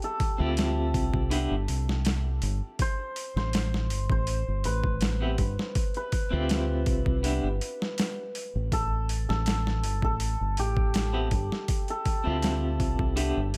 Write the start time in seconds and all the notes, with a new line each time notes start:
Already playing: G4
0.02 A4, closed hi-hat
0.20 kick, open hi-hat
0.38 D2 C4 E4 F4 G4
0.57 snare, open hi-hat
0.94 C2, kick, open hi-hat
1.14 C2, kick
1.30 B3 D4 E4 G4, open hi-hat
1.51 G1
1.68 C2, open hi-hat
1.89 snare
2.05 snare, open hi-hat
2.42 G1, open hi-hat
2.79 C5, kick, open hi-hat
3.16 open hi-hat
3.36 A1 C5, snare
3.53 snare, open hi-hat
3.74 snare
3.90 G1, open hi-hat
4.10 A1 C5, kick
4.27 open hi-hat
4.48 G1
4.64 A1 B4, open hi-hat
4.84 kick
5.01 snare, open hi-hat
5.20 B3 C4 E4 G4
5.38 G1, kick, open hi-hat
5.59 snare
5.75 kick, open hi-hat
5.94 B4, closed hi-hat
6.12 kick, open hi-hat
6.30 D2 C4 E4 F4 G4
6.49 snare, open hi-hat
6.86 C2, kick, open hi-hat
7.06 C2, kick
7.23 B3 D4 E4 G4, open hi-hat
7.44 G1
7.61 open hi-hat
7.82 snare
7.98 snare, open hi-hat
8.35 open hi-hat
8.56 A1
8.72 A4, kick, open hi-hat
9.09 open hi-hat
9.29 A1 A4, snare
9.46 snare, open hi-hat
9.67 snare
9.84 G1, open hi-hat
10.02 A1 A4, kick
10.20 open hi-hat
10.41 G1
10.57 A1 G4, open hi-hat
10.77 kick
10.94 snare, open hi-hat
11.13 B3 C4 E4 G4
11.31 G1, kick, open hi-hat
11.52 snare
11.68 kick, open hi-hat
11.88 A4, closed hi-hat
12.05 kick, open hi-hat
12.24 D2 C4 E4 F4 G4
12.42 snare, open hi-hat
12.80 C2, kick, open hi-hat
12.99 C2, kick
13.16 B3 D4 E4 G4, open hi-hat
13.37 G1
13.54 open hi-hat